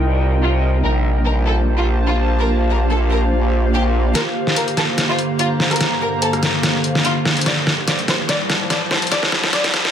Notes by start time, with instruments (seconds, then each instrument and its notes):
Already playing: wobble bass C2, ambient pad C3 G3 D#4, analog synth pad F4 A#4 D#5 G5
0.43 violin section F4
0.84 wobble bass A#1, ambient pad A#3 F4 C5, analog synth pad G4, violin section A#4
1.18 analog synth pad C5
1.25 violin section A#4
1.40 analog synth pad A5
1.46 violin section A4
1.51 analog synth pad F5
1.78 violin section F4
2.08 violin section F4
2.40 violin section A#4
2.70 violin section A#4
2.91 violin section A4
3.12 violin section A#4
3.74 violin section G4
4.15 ambient pad G2 D3 A#3, violin section A#4, snare, closed hi-hat, riser
4.47 snare
4.56 violin section A#4, closed hi-hat
4.68 closed hi-hat
4.77 violin section A4, snare, closed hi-hat
4.88 analog synth pad A#5
4.98 snare, closed hi-hat
5.09 violin section F4
5.19 closed hi-hat
5.39 violin section F4, closed hi-hat
5.60 snare
5.71 violin section A#4, cross-stick, closed hi-hat
5.76 closed hi-hat
5.81 snare, closed hi-hat
6.01 violin section A#4
6.22 violin section A4, closed hi-hat
6.33 cross-stick, closed hi-hat
6.43 violin section A#4, snare, closed hi-hat
6.63 snare, closed hi-hat
6.84 closed hi-hat
6.95 snare
7.05 violin section F4, closed hi-hat
7.25 snare
7.37 closed hi-hat
7.41 closed hi-hat
7.46 ambient pad A2 F3 G3, violin section D5, snare, closed hi-hat
7.67 snare
7.87 violin section D5, snare, closed hi-hat
7.99 closed hi-hat
8.07 violin section C5, analog synth pad A5, snare, closed hi-hat
8.29 violin section D5, snare, closed hi-hat
8.50 snare, closed hi-hat
8.70 violin section D5, snare, closed hi-hat
8.91 violin section C5, snare
9.02 closed hi-hat
9.07 closed hi-hat
9.12 violin section D5, snare, closed hi-hat
9.23 snare
9.32 snare
9.44 snare
9.53 violin section D5, snare, closed hi-hat
9.64 snare, closed hi-hat
9.74 snare, closed hi-hat
9.85 snare